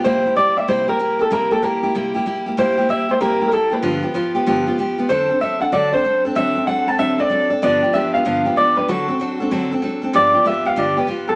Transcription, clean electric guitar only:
X:1
M:4/4
L:1/16
Q:"Swing" 1/4=190
K:Gmix
V:1 name="Clean electric guitar"
c4 d2 e2 c2 _B4 A2 | _B2 A2 B4 z8 | c4 e2 c2 _B3- B/2 B/2 A2 =B2- | B4 z12 |
c4 e2 ^f2 d2 c4 z2 | e4 ^f2 a2 e2 d4 z2 | d4 e2 f6 d2 B2 | ^F12 z4 |
d4 e2 f2 d2 B4 A2 |]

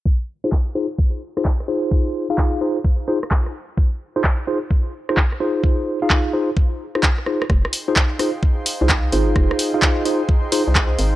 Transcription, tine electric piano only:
X:1
M:4/4
L:1/16
Q:"Swing 16ths" 1/4=129
K:Fm
V:1 name="Tine electric piano"
z3 [EFAc] z2 [EFAc] z4 [EFAc] z2 [EFAc]2- | [EFAc]3 [EFAf]3 [EFAc] z3 [EFAc] z4 z | z3 [EFAc] z2 [EFAc] z4 [EFAc] z2 [EFAc]2- | [EFAc]3 [EFAf]3 [EFAc] z4 [EFAc] z2 [EFAc] z |
z3 [EFAc] z2 [EFAc] z4 [EFAc] z2 [EFAc]2- | [EFAc]3 [EFAf]3 [EFAc] z3 [EFAc] z4 z |]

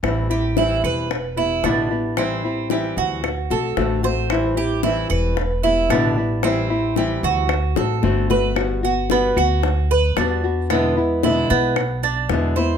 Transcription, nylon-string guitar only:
X:1
M:4/4
L:1/8
Q:1/4=113
K:G
V:1 name="Nylon-string guitar"
[E,G,CE] [G,CE] [E,G,CE]2 z [G,B,E] [B,,D,G,B,E] [G,B,E] | [E,G,CE] [G,CE] [E,G,CE]2 z [A,CF] [D,A,CF] [A,CF] | [E,G,CE] [G,CE] [E,G,CE]2 z [G,B,E] [B,,D,G,B,E] [G,B,E] | [E,G,CE] [G,CE] [E,G,CE]2 z [A,CF] [D,A,CF] [A,CF] |
[G,B,F] [B,F] [G,B,F] [B,F] z2 [G,B,F] [B,F] | [B,,D,^G,B,E] [G,B,E] [B,,D,G,B,E] [G,B,E] z2 [B,,D,G,B,E] [G,B,E] |]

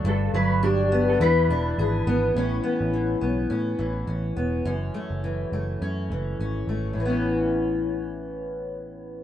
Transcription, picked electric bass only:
X:1
M:4/4
L:1/16
Q:"Swing 16ths" 1/4=104
K:A
V:1 name="Picked electric bass" clef=bass
=G,,,2 G,,,6 E,,2 E,,,2 ^G,,,2 G,,,2 | A,,,2 z A,,,3 B,,,2 A,,2 A,,,2 A,,,2 E,,,2 | F,,,2 z F,,,3 F,,,2 F,,2 F,,,2 G,,,2 G,,,2 | A,,,16 |]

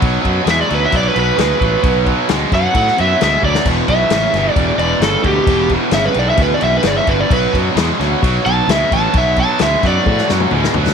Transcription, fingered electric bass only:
X:1
M:4/4
L:1/8
Q:1/4=131
K:Bm
V:1 name="Fingered electric bass" clef=bass
B,,, F,, E,, D,, B,,, B,,, D,, A,,, | B,,,2 D,, F,, A,, F,, D,, D,, | E,,, B,,, A,,, G,,, E,,, E,,, G,,, D,, | E,,,2 G,,, B,,, D,, B,,, G,,, G,,, |
B,,, F,, E,, D,, B,,, B,,, D,, A,,, | B,,,2 D,, F,, A,, F,, D,, D,, |]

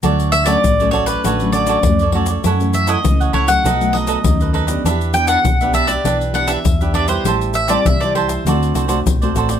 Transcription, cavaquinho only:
X:1
M:4/4
L:1/16
Q:1/4=100
K:D
V:1 name="Cavaquinho"
[FAcd]3 [FAcd] z [Acd] [FAcd] [Acd] [FAcd]2 [FAcd] [FAcd] z [Acd] [FAcd] [Acd] | [EAcf]3 [EAcf] z [Acf] [EAcf] [Acf] [^DAB^d]2 [DABd] [DABd] z [ABd] [DABd] [ABd] | [DGBe]3 [DGBe] z [GBe] [DGBe] [GBe] [DGBe]2 [DGBe] [DGBe] z [GBe] [DGBe] [GBe] | [G=cea]3 [Gcea] z [cea] [Gcea] [cea] [FAcd]2 [FAcd] [FAcd] z [Acd] [FAcd] [Acd] |]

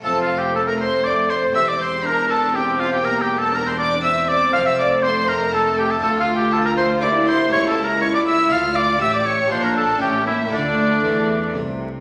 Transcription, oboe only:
X:1
M:3/4
L:1/16
Q:1/4=120
K:F
V:1 name="Oboe"
(3A2 F2 G2 A B c2 d2 c2 | e d c2 B2 A2 G2 F G | (3B2 G2 A2 B c d2 e2 d2 | f e d2 c2 B2 A2 G A |
[K:Dm] (3A2 F2 G2 A B c2 d2 c2 | (3^c2 A2 ^A2 c d e2 f2 d2 | e d ^c2 =c B A2 G2 E2 | D8 z4 |]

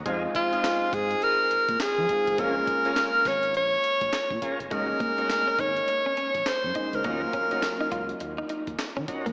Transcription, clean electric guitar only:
X:1
M:4/4
L:1/16
Q:"Swing 16ths" 1/4=103
K:Bbm
V:1 name="Clean electric guitar"
z16 | z16 | A, z B, z2 D E z2 D D z3 E z | B, z D z2 E F z2 E E z2 D z B, |]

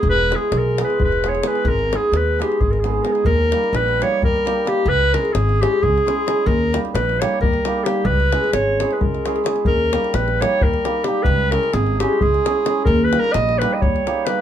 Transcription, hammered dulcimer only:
X:1
M:7/8
L:1/8
Q:1/4=131
K:D#phr
V:1 name="Hammered dulcimer"
z [G,B,EG] z [G,B,EG] z [G,B,EG] [G,B,EG] | z [G,B,DG] z [G,B,DG] z [G,B,DG] [G,B,DG] | z [=G,A,D=G] z [G,A,DG] z [G,A,DG] [G,A,DG] | z [G,CEG] z [G,CEG] z [G,CEG] [G,CEG] |
z [=G,A,D=G] z [G,A,DG] z [G,A,DG] [G,A,DG] | z [G,CEG] z [G,CEG] z [G,CEG] [G,CEG] | z [=G,A,D=G] z [G,A,DG] z [G,A,DG] [G,A,DG] | z [G,CEG] z [G,CEG] z [G,CEG] [G,CEG] |
z [=G,A,D=G] z [G,A,DG] z [G,A,DG] [G,A,DG] |]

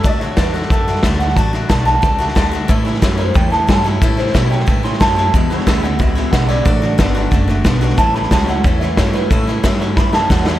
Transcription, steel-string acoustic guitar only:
X:1
M:4/4
L:1/8
Q:1/4=181
K:Amix
V:1 name="Steel-string acoustic guitar"
[D,A,DF] [A,DF] [D,A,DF] [A,DF] [D,A,DF] [A,DF] [D,A,DF] [A,DF] | [D,A,DF] [A,DF] [D,A,DF] [A,DF] [D,A,DF] [A,DF] [D,A,DF] [A,DF] | [A,,E,A,CE] [A,CE] [A,,E,A,CE] [A,CE] [E,A,CE] [A,CE] [A,,E,A,CE] [A,CE] | [A,,E,A,CE] [A,CE] [A,,E,A,CE] [A,CE] [E,A,CE] [A,CE] [A,,E,A,CE] [A,CE] |
[E,,B,,E,^G,B,E] [E,G,B,E] [E,,B,,E,G,B,E] [E,G,B,E] [E,G,B,E] [E,G,B,E] [E,,B,,E,G,B,E] [E,G,B,E] | [D,A,DF] [A,DF] [D,A,DF] [A,DF] [D,A,DF] [A,DF] [D,A,DF] [A,DF] | [A,,E,A,CE] [A,CE] [A,,E,A,CE] [A,CE] [E,A,CE] [A,CE] [A,,E,A,CE] [A,CE] | [A,,E,A,CE] [A,CE] [A,,E,A,CE] [A,CE] [E,A,CE] [A,CE] [A,,E,A,CE] [A,CE] |]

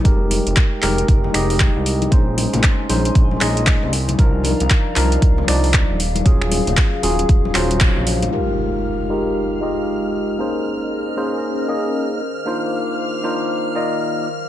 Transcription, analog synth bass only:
X:1
M:4/4
L:1/16
Q:"Swing 16ths" 1/4=116
K:Fm
V:1 name="Analog synth bass" clef=bass
F,,,3 F,,, z2 F,,, z F,,, z F,,,3 C,,3 | B,,,3 B,,, z2 B,,, z B,,, z B,,,3 C,,3 | C,,3 C,, z2 C,, z C,, z C,,3 E,,,3 | E,,,3 E,,, z2 E,,, z E,,, z E,,,3 B,,,3 |
z16 | z16 | z16 |]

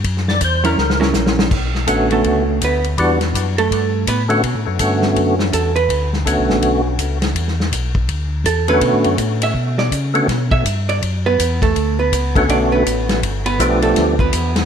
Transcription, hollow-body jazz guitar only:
X:1
M:4/4
L:1/8
Q:"Swing" 1/4=164
K:Bm
V:1 name="Hollow-body jazz guitar"
z3 [F,CE^A] z [F,CEA]3 | z3 [A,A]3 [B,B] z | z3 [A,A]3 [B,B] z | z6 A B- |
B z6 z | z6 A B- | B z2 e2 d z2 | z e2 d z [B,B]2 [A,A]- |
[A,A] [B,B]3 [Dd] [B,B]3 | z [B,B]2 [A,A]2 [B,B]3 |]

